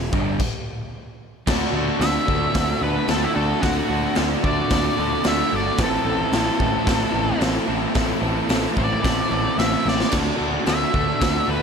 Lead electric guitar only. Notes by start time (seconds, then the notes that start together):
2.01 E5
2.83 B4
3.11 A4
3.23 E4
3.35 A4
3.61 F#4
4.44 D5
5.28 E5
5.56 D5
5.83 A4
8.78 D5
9.59 E5
9.89 D5
10.70 E5
11.50 B4